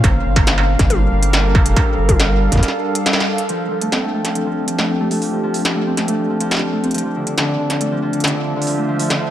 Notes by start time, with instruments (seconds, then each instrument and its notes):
Already playing: ambient pad A#3 C5 F5
0.04 analog synth bass G1, ambient pad G3 D4, kick, closed hi-hat, struck metal
0.25 analog synth bass G1
0.36 kick, closed hi-hat, struck metal
0.41 ambient pad A4
0.47 ambient pad A#4, snare, closed hi-hat
0.58 struck metal
0.79 analog synth bass G1, kick, snare, closed hi-hat
0.90 closed hi-hat, high tom
1.12 analog synth bass G1
1.23 closed hi-hat
1.33 snare, closed hi-hat
1.55 kick, struck metal
1.66 analog synth bass F1, closed hi-hat
1.76 kick, closed hi-hat, struck metal
1.98 analog synth bass G1
2.09 kick, closed hi-hat, high tom
2.20 snare, closed hi-hat
2.52 analog synth bass G1, kick, snare, closed hi-hat
2.56 kick, snare
2.59 kick, snare, closed hi-hat
2.68 snare
2.95 closed hi-hat
3.06 snare, closed hi-hat
3.13 snare
3.20 snare
3.38 closed hi-hat
3.49 ambient pad F3, harp F3, closed hi-hat
3.71 harp F3
3.81 harp A3, closed hi-hat
3.92 harp C4, snare, closed hi-hat
3.98 ambient pad G4
4.03 harp A3
4.14 harp A3
4.25 harp F3, snare, closed hi-hat
4.35 harp F3, closed hi-hat
4.46 harp F3
4.68 harp F3, closed hi-hat
4.79 harp A3, snare
4.89 harp C4
5.00 harp A3
5.11 harp A3, open hi-hat
5.22 harp F3, open hi-hat
5.33 harp F3
5.43 harp F3
5.54 open hi-hat
5.65 harp F3, snare, closed hi-hat
5.76 harp A3
5.87 harp C4
5.97 harp A3, snare, closed hi-hat
6.08 harp A3, closed hi-hat
6.19 harp F3
6.30 harp F3
6.40 harp F3, closed hi-hat
6.51 snare, closed hi-hat
6.54 snare
6.57 snare
6.59 harp F3, snare
6.73 harp A3
6.84 harp C4, closed hi-hat
6.91 ambient pad D3, harp F3, closed hi-hat
6.94 closed hi-hat
6.98 closed hi-hat
7.05 harp F3
7.16 harp D3
7.27 harp D3, closed hi-hat
7.38 harp D3, snare, closed hi-hat
7.44 ambient pad F4
7.59 harp D3
7.70 harp F3, snare, closed hi-hat
7.81 harp A3, closed hi-hat
7.87 ambient pad C5 E5
7.92 harp F3
8.02 harp F3
8.13 harp D3, closed hi-hat
8.20 snare, closed hi-hat
8.24 harp D3, closed hi-hat
8.27 closed hi-hat
8.35 harp D3
8.56 harp D3
8.62 open hi-hat
8.67 harp F3, open hi-hat
8.78 harp A3
8.89 harp F3
8.99 harp F3, open hi-hat
9.10 harp D3, snare, closed hi-hat
9.21 harp D3